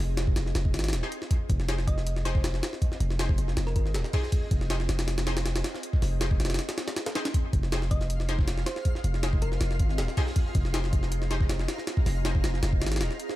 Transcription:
Already playing: C4 F4 G#4 D#5
0.00 F1
0.17 snare, closed hi-hat, shaker
0.27 kick
0.36 F1, snare, closed hi-hat, shaker
0.46 snare
0.55 F1, snare, closed hi-hat, shaker
0.65 kick
0.74 G#1, snare, closed hi-hat, shaker
0.79 snare, closed hi-hat
0.84 snare, closed hi-hat
0.88 snare, closed hi-hat
0.93 D#1, snare, closed hi-hat, shaker
1.03 D#4 G4 G#4 C5, snare
1.12 closed hi-hat
1.22 snare
1.31 C4 F4 G#4 D#5, kick, closed hi-hat, shaker
1.49 F1, kick, closed hi-hat, shaker
1.60 snare
1.68 D#4 G4 G#4 C5, snare, closed hi-hat, shaker
1.79 snare
1.87 F1 D#5, kick, closed hi-hat, shaker
1.98 snare, closed hi-hat
2.06 closed hi-hat, shaker
2.16 snare
2.25 D#4 G4 G#4 C5, snare, closed hi-hat, shaker
2.34 kick, snare
2.44 snare, closed hi-hat, shaker
2.54 snare
2.63 snare, closed hi-hat, shaker
2.73 snare
2.81 C4 F4 G#4 D#5, kick, closed hi-hat, shaker
2.92 snare
3.00 F1, closed hi-hat, shaker
3.10 snare
3.19 D#4 G4 G#4 C5, snare, closed hi-hat, shaker
3.29 kick
3.38 F1, closed hi-hat, shaker
3.48 snare
3.57 F1, snare, closed hi-hat, shaker
3.67 A#4, snare
3.76 G#1 A#4, kick, closed hi-hat, shaker
3.86 snare
3.94 D#1, snare, closed hi-hat, shaker
4.04 snare
4.13 D#4 G4 G#4 C5, kick, closed hi-hat, open hi-hat
4.23 snare
4.32 C4 F4 G#4 D#5, kick, closed hi-hat, shaker
4.51 F1, kick, closed hi-hat, shaker
4.61 snare
4.70 D#4 G4 G#4 C5, snare, closed hi-hat, shaker
4.80 snare
4.89 F1, snare, closed hi-hat
4.99 snare, closed hi-hat
5.08 snare, closed hi-hat, shaker
5.18 snare, closed hi-hat
5.27 D#4 G4 G#4 C5, snare, closed hi-hat
5.37 snare, closed hi-hat
5.46 snare, closed hi-hat, shaker
5.56 snare, closed hi-hat
5.64 snare, closed hi-hat, shaker
5.74 snare, shaker
5.83 C4 F4 G#4 D#5, closed hi-hat, shaker
5.93 kick, snare
6.02 F1, snare, open hi-hat, shaker
6.21 D#4 G4 G#4 C5, snare, closed hi-hat, shaker
6.31 kick
6.40 F1, snare, closed hi-hat, shaker
6.45 snare, closed hi-hat
6.50 snare, closed hi-hat
6.54 snare, closed hi-hat
6.59 snare, closed hi-hat, shaker
6.69 snare, closed hi-hat
6.78 snare, closed hi-hat, shaker
6.88 snare, closed hi-hat
6.96 snare, closed hi-hat
7.06 snare, closed hi-hat, shaker
7.15 D#4 G4 G#4 C5, snare, closed hi-hat
7.25 snare, closed hi-hat, shaker
7.34 C4 F4 G#4 D#5 F5, kick, closed hi-hat, shaker
7.53 F1, kick, closed hi-hat, shaker
7.63 snare
7.72 D#4 G4 G#4 C5, snare, closed hi-hat, shaker
7.82 snare
7.91 F1 D#5, kick, closed hi-hat, shaker
8.01 snare, closed hi-hat
8.10 closed hi-hat, shaker
8.20 snare
8.28 D#4 G4 G#4 C5, snare, closed hi-hat, shaker
8.39 kick, snare
8.48 snare, closed hi-hat, shaker
8.58 snare
8.66 C5, snare, closed hi-hat
8.76 snare
8.85 C4 F4 G#4 D#5, kick, closed hi-hat, shaker
8.95 snare
9.04 F1, closed hi-hat, shaker
9.14 snare
9.23 D#4 G4 G#4 C5, snare, closed hi-hat, shaker
9.33 kick
9.42 F1 A#4, closed hi-hat, shaker
9.52 snare
9.61 F1, snare, closed hi-hat, shaker
9.71 snare
9.79 G#1, kick, closed hi-hat, shaker
9.89 snare
9.98 D#1, snare, closed hi-hat, shaker
10.08 snare
10.17 D#4 G4 G#4 C5, kick, closed hi-hat, open hi-hat
10.27 snare
10.36 C4 F4 G#4 D#5 A#5, kick, closed hi-hat, shaker
10.54 F1, kick, closed hi-hat, shaker
10.65 snare
10.73 D#4 G4 G#4 C5, snare, closed hi-hat, shaker
10.84 snare
10.93 F1, kick, closed hi-hat, shaker
11.03 snare, closed hi-hat
11.12 closed hi-hat, shaker
11.22 snare
11.31 D#4 G4 G#4 C5, snare, closed hi-hat, shaker
11.40 kick, snare
11.49 snare, closed hi-hat, shaker
11.59 snare
11.68 snare, closed hi-hat, shaker
11.78 snare
11.87 C4 F4 G#4 D#5, snare, closed hi-hat, shaker
11.97 kick, snare
12.05 F1, snare, open hi-hat, shaker
12.25 D#4 G4 G#4 C5, snare, closed hi-hat, shaker
12.35 kick
12.44 F1, snare, closed hi-hat, shaker
12.54 snare
12.63 F1, snare, closed hi-hat, shaker
12.73 kick
12.81 G#1, snare, closed hi-hat, shaker
12.86 snare, closed hi-hat
12.92 snare, closed hi-hat
12.96 snare, closed hi-hat
13.00 D#1, snare, closed hi-hat, shaker
13.11 snare
13.20 closed hi-hat
13.29 snare

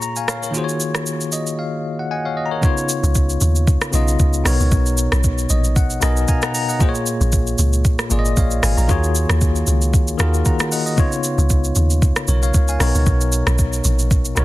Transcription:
Already playing: A#2 A#3 F4 G#4 C#5 A#5 C#6
0.02 A#5, shaker
0.16 F5 G#5, shaker
0.28 C#5 F5, cross-stick, shaker
0.43 A#4 C#5, shaker
0.51 D#3 A#3 F4, shaker
0.55 F#4 G#4 C5
0.64 C#5
0.69 shaker
0.80 shaker
0.95 cross-stick, shaker
1.06 shaker
1.21 shaker
1.32 D#5, shaker
1.47 shaker
1.59 F5
1.99 F#5
2.11 D#5 F#5 G#5
2.25 C#5 F5
2.37 D#5
2.46 A#5
2.51 A#4 C#5
2.61 C#3 B3 D#4 F4 C#5, kick, shaker
2.78 shaker
2.89 shaker
3.04 C#2, shaker
3.15 kick, shaker
3.30 shaker
3.41 D#2, shaker
3.56 shaker
3.67 kick, shaker
3.81 cross-stick, shaker
3.92 B1 C#3 B3 D#4 F4 D#5, shaker
4.08 shaker
4.19 C#2, kick, shaker
4.33 shaker
4.44 B1 B2 B3 D#4 A#4 C#5, cross-stick, open hi-hat, shaker
4.60 C#2, shaker
4.72 B1, kick, shaker
4.86 shaker
4.98 shaker
5.12 B1, cross-stick, shaker
5.24 kick, shaker
5.38 shaker
5.50 A#1 D#5, shaker
5.64 shaker
5.76 F#5, kick, shaker
5.90 shaker
6.01 B1 B2 B3 D#4 A#4 D#5 G#5, cross-stick, shaker
6.17 shaker
6.28 F5 G#5 A#5, kick, shaker
6.42 F#5 A#5, cross-stick, shaker
6.55 A#5, open hi-hat, shaker
6.69 D#5 F#5, shaker
6.79 A#2 A#3 F4 G#4 C5, kick, shaker
6.89 C#5
6.95 shaker
7.06 shaker
7.21 A#1, shaker
7.33 kick, shaker
7.47 shaker
7.58 C#2, shaker
7.73 shaker
7.85 kick, shaker
7.99 cross-stick, shaker
8.09 G#1 A#2 A#3 F4 G#4 D5, shaker
8.19 D#5
8.25 shaker
8.37 A#1 C#5 F5, kick, shaker
8.51 shaker
8.63 G#1 F5 G#5, cross-stick, open hi-hat, shaker
8.77 A#1 A#5, shaker
8.88 D#2 D#3 A#3 F4 F#4 G#4 C#5, kick, shaker
9.04 shaker
9.15 shaker
9.29 D#2, cross-stick, shaker
9.41 kick, shaker
9.56 shaker
9.67 C#2, shaker
9.82 shaker
9.94 kick, shaker
10.08 shaker
10.18 D#2 D#3 A#3 F4 F#4 G#4 A#4, cross-stick, shaker
10.34 shaker
10.45 F#5 A#5, kick, shaker
10.59 cross-stick, shaker
10.72 D#5 F#5, open hi-hat, shaker
10.86 D#5, shaker
10.96 C#3 B3 D#4 F4 C#5, kick, shaker
11.12 shaker
11.24 shaker
11.38 C#2, shaker
11.50 kick, shaker
11.64 shaker
11.76 D#2, shaker
11.90 shaker
12.02 kick, shaker
12.16 cross-stick, shaker
12.28 B1 A#4 C#5, shaker
12.43 C#5 F5, shaker
12.54 C#2, kick, shaker
12.68 F5 G#5, shaker
12.79 B1 B2 B3 D#4 A#4 C#5, cross-stick, open hi-hat, shaker
12.95 C#2, shaker
13.06 B1, kick, shaker
13.21 shaker
13.32 shaker
13.47 B1, cross-stick, shaker
13.59 kick, shaker
13.73 shaker
13.84 A#1, shaker
13.99 shaker
14.11 kick, shaker
14.25 shaker
14.35 B1 B2 B3 D#4 A#4 C#5, cross-stick, shaker

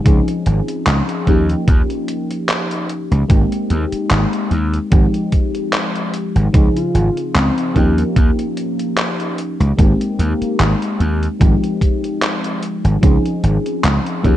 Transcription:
0.04 C#2 F3 C4 C#4 D#4 G#4, kick, closed hi-hat
0.28 closed hi-hat
0.46 G#1, closed hi-hat
0.68 closed hi-hat
0.86 C#2, clap, closed hi-hat
1.09 closed hi-hat
1.26 D#2 F3 A#3 C#4 D#4 G4, kick, closed hi-hat
1.49 closed hi-hat
1.68 D#2, kick, closed hi-hat
1.90 closed hi-hat
2.08 closed hi-hat
2.31 closed hi-hat
2.49 clap, closed hi-hat
2.71 closed hi-hat
2.89 closed hi-hat
3.11 C#2, closed hi-hat
3.28 G#1 G#3 A#3 C4 D#4 G4, kick, closed hi-hat
3.52 closed hi-hat
3.70 D#2, closed hi-hat
3.92 muted slap bass stroke, closed hi-hat
4.10 G#1, clap, closed hi-hat
4.33 closed hi-hat
4.51 D#2, closed hi-hat
4.74 closed hi-hat
4.91 G#1 F3 G#3 C4 D#4 G4, kick, closed hi-hat
5.14 closed hi-hat
5.32 kick, closed hi-hat
5.55 closed hi-hat
5.73 clap, closed hi-hat
5.95 closed hi-hat
6.14 closed hi-hat
6.36 G#1, closed hi-hat
6.53 C#2 C#3 F3 C4 D#4 G#4, kick, closed hi-hat
6.76 F4, closed hi-hat
6.95 G#1, closed hi-hat
7.17 closed hi-hat
7.35 C#2 C4, clap, closed hi-hat
7.58 closed hi-hat
7.74 D#2 F3 A#3 C#4 D#4 G4, kick, closed hi-hat
7.98 A#3, closed hi-hat
8.16 D#2, kick, closed hi-hat
8.39 closed hi-hat
8.57 closed hi-hat
8.79 closed hi-hat
8.97 clap, closed hi-hat
9.20 closed hi-hat
9.38 closed hi-hat
9.60 C#2, closed hi-hat
9.77 G#1 G#3 A#3 C4 D#4 G4, kick, closed hi-hat
10.01 closed hi-hat
10.19 D#2 A#3, closed hi-hat
10.41 muted slap bass stroke, closed hi-hat
10.59 G#1, clap, closed hi-hat
10.82 closed hi-hat
11.00 D#2, closed hi-hat
11.23 closed hi-hat
11.39 G#1 F3 G#3 C4 D#4 G4, kick, closed hi-hat
11.64 closed hi-hat
11.81 kick, closed hi-hat
12.04 closed hi-hat
12.22 clap, closed hi-hat
12.44 closed hi-hat
12.63 closed hi-hat
12.84 G#1, closed hi-hat
13.01 C#2 F3 C4 C#4 D#4 G#4, kick, closed hi-hat
13.26 closed hi-hat
13.43 G#1, closed hi-hat
13.66 closed hi-hat
13.84 C#2, clap, closed hi-hat
14.06 closed hi-hat
14.23 D#2 F3 A#3 C#4 D#4 G4, kick, closed hi-hat

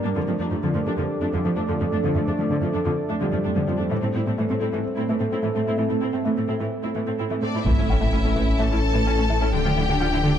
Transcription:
Already playing: G3 D4 E4 A#4 D5 E5
0.04 G2 A#3 D4
0.16 F2 D3 F3 A3 D4 A4 D5
0.28 F2 F3 A3
0.40 F2 F3 A3 D4
0.51 F2 F3 A3
0.63 F2 D3 F3
0.75 F2 F3 A3
0.86 F2 A3 D4 G4
0.98 F2 D3 F3
1.22 F2 A3 D4
1.33 F2 D3 F3
1.45 F2 F3 A3
1.57 F2 F3 A3 D4
1.69 F2 D3 F3
1.80 F2 F3 A3 D4
1.92 F2 A3 D4
2.03 F2 D3 F3
2.15 F2 F3 A3
2.26 F2 F3 A3 D4 A4
2.39 F2 F3 A3
2.50 F2 D3 F3
2.62 F2 F3 A3
2.74 F2 A3 D4
2.86 F2 D3 F3
3.09 F2 A3 D4
3.21 F2 D3 F3 G3 G4
3.32 F2 F3 A3
3.45 F2 F3 A3 D4
3.55 F2 D3 F3
3.67 F2 F3 A3 D4 C5
3.78 F2 A3 D4
3.90 A2 E3 A3 C4 A4 E5
4.02 A2 A3 C4 E4
4.15 A2 C4 E4
4.27 A2 A3 C4
4.38 A2 E3 A3
4.50 A2 A3 C4
4.62 A2 C4 E4 A4
4.74 A2 E3 A3
4.84 C5
4.97 A2 C4 E4
5.08 A2 E3 A3
5.20 A2 A3 C4
5.32 A2 C4 E4
5.43 A2 E3 A3
5.56 A2 A3 C4 A4
5.67 A2 C4 E4
5.78 A2 E3 A3
5.89 A2 A3 C4 E4
6.01 A2 C4 E4
6.13 A2 A3 C4
6.25 A2 E3 A3
6.37 A2 A3 C4
6.49 A2 C4 E4 A4
6.60 A2 E3 A3
6.83 A2 C4 E4
6.95 A2 E3 A3
7.07 A2 A3 C4
7.19 A2 C4 E4
7.30 A2 E3 A3
7.42 A2 A3 C4 D4 A4 D5
7.54 A2 C4 E4
7.64 A1 A2 E3 A3 C#4 E4 A4 E5, taiko, impact
7.77 A2 C#4 E4
7.89 A2 A3 C#4 E4 G5
8.01 A2 E3 A3
8.12 A2 C#4 E4 A4
8.24 A2 A3 C#4 A4
8.36 A2 E3 A3, taiko
8.59 A2 E3 A3 A4 A5
8.71 A2 C#4 E4 A4
8.94 A2 E3 A3
9.06 A2 C#4 E4 A5
9.18 A2 A3 C#4
9.30 A2 E3 A3
9.41 A2 C#4 E4
9.52 D1 D3 F3 D4 F4 G4 G5
9.65 D3 F3 A3 F4
9.77 D3 E3 A3 E4
9.89 D3 D4
10.00 D3 F3 D4 F4 G5 G6
10.13 D3 E3 D4 E4
10.23 D3 D4

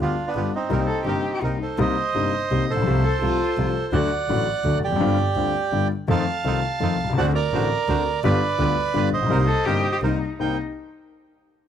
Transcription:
0.00 D2 D3 G3 B3 D4 F4 G4
0.27 B3 D4
0.35 G1 G2 D3 G3 B3 F4 G4
0.55 C4 D#4
0.69 C2 C3 G3 A#3 C4 D#4 A#4
0.86 A4
1.05 G1 G2 C3 G3 A#3 C4 D#4 G4 A#4
1.33 G4
1.41 C2 C3 G3 A#3 C4 D#4 A#4
1.62 A4 C5
1.78 C2 C3 G3 A#3 D#4 C5 D#5
2.14 G1 G2 C3 G3 A#3 D#4
2.51 C2 C3 G3 A#3 D#4
2.69 A#1 A4 C5
2.74 A1 A#1
2.82 B1
2.86 C2 C3 F3 A3 F4
3.04 A4
3.22 C2 C3 F3 A3 F4
3.57 C2 C3 F3 A3 F4
3.92 D2 D3 F#3 A3 F#4 D5 F#5
4.29 A1 A2 D3 F#3 A3 F#4
4.64 D2 D3 F#3 A3 F#4
4.82 F1 G4 D5
4.88 E2
4.92 F2 F#2
5.00 G1 G2 D3 G3 C4 F4
5.36 D2 D3 G3 C4 F4
5.72 G1 G2 D3 G3 B3 F4
6.08 F2 D#3 F3 A3 C4 D#4 F4 A4 F5 A5
6.44 C2 C3 D#3 A3 C4 D#4 F4 A4
6.80 F2 D#3 F3 A3 C4 D#4 F4 A4
6.99 C2
7.04 B1
7.09 C2 C#2
7.17 D2 D3 A3 C4 D4 F#4 C5 D5 F#5
7.35 A#4 D5
7.52 A1 A2 D3 A3 C4 D4 F#4 C5
7.88 D2 D3 A3 C4 D4 F#4 C5
8.24 G1 G2 D3 G3 B3 F4 G4 B4 D5
8.58 D2 D3 G3 B3 F4 G4 B4
8.94 G1 G2 D3 G3 B3 F4 G4 B4
9.13 A#1 C5 D#5
9.17 A1
9.22 A#1
9.26 B1 C2 C3 G3 A#3 D#4 A#4
9.30 C2 D#4 C5
9.46 A4
9.65 G1 G2 C3 G3 A#3 D#4 G4 A#4 C5
9.92 G4
10.02 C2 C3 G3 A#3 D#4 A#4 C5
10.39 C2 A#3 C4 D#4 A#4 C5 G5

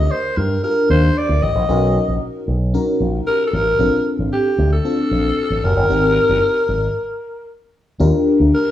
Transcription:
Already playing: D3 F4 G4 A#4 D#5
0.11 C5
0.37 G2 A#4
0.63 D4 F4 G4 A4 A#4
0.70 A#4
0.90 D#2 C5
1.17 D5
1.29 D2
1.42 A1 D#5
1.55 A#1
1.69 B1 C#4 D#4 F#4 A#4
2.08 A#1
2.48 B1
2.74 C#4 D#4 F#4 A#4
3.00 A#1
3.27 A#4
3.47 A4
3.53 A1 A#4
3.79 A#1 C4 D4 F4 A4
4.19 A1
4.33 G4
4.58 D2
4.72 A4
4.85 C4 D4 F4 A4
5.11 A#1
5.50 A1
5.64 F#1 A#4
5.77 G1
5.90 G#1 C4 D#4 G4 A#4
6.29 G1
6.68 G#1
8.00 D#2 D4 F4 G4 A#4
8.40 D2
8.54 A#4

